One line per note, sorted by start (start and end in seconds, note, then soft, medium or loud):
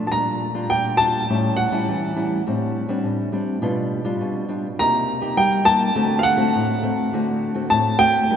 0.07 0.11 A5 medium
0.11 0.67 A#2 medium
0.11 0.51 G3 soft
0.11 0.51 D4 soft
0.11 0.51 F4 medium
0.11 0.66 A#5 medium
0.54 0.94 G3 medium
0.54 0.94 D4 medium
0.54 0.94 F4 medium
0.70 1.26 A#2 medium
0.70 0.98 G5 medium
0.97 1.24 G3 medium
0.97 1.24 D4 medium
0.97 1.24 F4 medium
0.97 1.53 A5 loud
1.30 1.84 A2 medium
1.30 1.68 G3 medium
1.30 1.68 C#4 medium
1.30 1.68 E4 medium
1.57 2.41 F#5 medium
1.72 2.11 G3 medium
1.72 2.11 C#4 medium
1.72 2.12 E4 medium
1.88 2.43 E3 medium
2.16 2.40 G3 medium
2.16 2.41 C#4 medium
2.16 2.41 E4 medium
2.47 3.02 A2 medium
2.47 2.85 G3 soft
2.47 2.85 C4 medium
2.47 2.85 D4 medium
2.88 3.28 G3 medium
2.88 3.28 C4 medium
2.88 3.28 D4 medium
3.04 3.59 A2 medium
3.32 3.57 G3 medium
3.32 3.57 C4 medium
3.32 3.58 D4 medium
3.62 4.18 B2 medium
3.62 4.01 G3 medium
3.62 4.01 D4 medium
3.62 4.02 F4 medium
4.04 4.44 G3 medium
4.04 4.44 D4 medium
4.04 4.45 F4 medium
4.21 4.76 B2 medium
4.48 4.66 G3 medium
4.48 4.67 D4 soft
4.48 4.67 F4 medium
4.79 5.35 C3 medium
4.79 5.18 A#3 medium
4.79 5.19 D#4 medium
4.79 5.19 G4 medium
4.79 5.34 A#5 medium
5.21 5.61 A#3 medium
5.21 5.61 D#4 medium
5.21 5.62 G4 medium
5.37 5.93 G3 medium
5.37 5.66 G5 medium
5.65 5.90 A#3 medium
5.65 5.91 D#4 medium
5.65 5.91 G4 medium
5.65 6.21 A5 loud
5.95 6.51 D3 medium
5.95 6.35 A3 medium
5.95 6.35 C4 medium
5.95 6.35 F#4 medium
6.19 6.23 F5 medium
6.23 7.08 F#5 medium
6.37 6.78 A3 medium
6.37 6.78 C4 medium
6.37 6.78 F#4 medium
6.55 7.10 A2 medium
6.83 7.08 A3 medium
6.83 7.08 C4 medium
6.83 7.08 F#4 medium
7.13 7.69 D3 medium
7.13 7.52 A3 medium
7.13 7.53 C4 medium
7.13 7.53 F#4 medium
7.55 7.95 A3 medium
7.55 7.95 C4 medium
7.55 7.95 F#4 medium
7.70 8.27 A2 medium
7.70 8.01 A5 medium
7.98 8.24 A3 medium
7.98 8.24 C4 medium
7.98 8.25 F#4 medium
7.98 8.37 G5 loud
8.30 8.37 G3 medium
8.30 8.37 D4 medium
8.30 8.37 F4 medium
8.30 8.37 A#4 medium